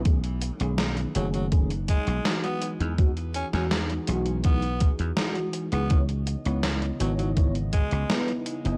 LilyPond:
<<
  \new Staff \with { instrumentName = "FM electric piano" } { \time 4/4 \key e \major \tempo 4 = 82 <dis a cis' gis'>16 r8 <dis a cis' gis'>8. <dis a cis' gis'>8 <dis a cis' gis'>16 r8. <e gis dis' fis'>8. <e gis dis' gis'>16 | <e gis dis' fis'>16 r8 <e gis dis' fis'>8. <e gis dis' fis'>8 <e gis dis' fis'>16 r8. <e gis dis' fis'>8. <e gis dis' gis'>16 | <b dis' e' cis''>16 r8 <b dis' e' cis''>8. <b dis' e' cis''>8 <b dis' e' cis''>16 r8. <b dis' e' b'>8. <b dis' e' dis''>16 | }
  \new Staff \with { instrumentName = "Ambient pad" } { \time 4/4 \key e \major <fis b dis'>2.~ <fis b dis'>8 <e dis' fis' gis'>8~ | <e dis' fis' gis'>1 | <cis e b dis''>1 | }
  \new Staff \with { instrumentName = "Tenor saxophone" } { \clef bass \time 4/4 \key e \major r4. fis16 fis16 r8 gis8 r16 b16 r8 | r8 cis'16 cis'16 r4 b8 r4 r16 b16 | r4. fis16 fis16 r8 gis8 r4 | }
  \new Staff \with { instrumentName = "Slap bass" } { \clef bass \time 4/4 \key e \major b,,8 r16 b,,8 r16 fis,,4 r16 b,,16 r8. e,16~ | e,8 r16 e,8 r16 b,,4 r16 e,16 r8. cis,16~ | cis,8 r16 cis,8 r16 gis,,4 r16 cis,16 r8. fis,,16 | }
  \new DrumStaff \with { instrumentName = "Drums" } \drummode { \time 4/4 <hh bd>16 hh16 hh16 hh16 <hh sn>16 hh16 hh16 hh16 <hh bd>16 hh16 <hh bd>16 hh16 <hh sn>16 hh16 hh16 hh16 | <hh bd>16 hh16 hh16 <hh sn>16 <hh sn>16 hh16 hh16 hh16 <hh bd>16 hh16 <hh bd>16 hh16 <hh sn>16 hh16 hh16 hh16 | <hh bd>16 hh16 hh16 hh16 <hh sn>16 hh16 hh16 hh16 <hh bd>16 hh16 <hh bd>16 hh16 <hh sn>16 hh16 hh16 hh16 | }
>>